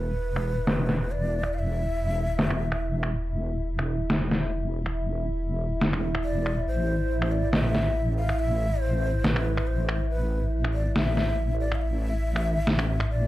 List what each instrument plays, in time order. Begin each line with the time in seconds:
Already playing: wobble bass E1, analog synth pad E4 E5, ney B4
0.36 finger snap
0.67 snare
0.89 snare
1.11 ney D5
1.43 finger snap
1.54 ney F5
1.59 ney E5
2.39 snare
2.50 finger snap
2.72 finger snap
3.03 finger snap
3.79 finger snap
4.10 snare
4.31 snare
4.86 finger snap
5.81 snare
5.93 finger snap
6.15 finger snap
6.24 ney D5
6.46 finger snap
6.67 wobble bass A1, ney C5
7.22 finger snap
7.32 ney D5
7.53 ney E5, snare
7.75 snare
8.18 ney F5
8.29 finger snap
8.39 ney E5
8.82 ney C5
9.24 ney B4, snare
9.36 finger snap
9.57 finger snap
9.67 ney C5
9.89 finger snap
10.10 ney B4
10.64 finger snap
10.74 ney D5
10.96 ney E5, snare
11.17 snare
11.60 ney D5
11.72 ney F5, finger snap
11.82 ney E5
12.36 finger snap
12.67 snare
12.79 finger snap
13.00 finger snap
13.11 ney D5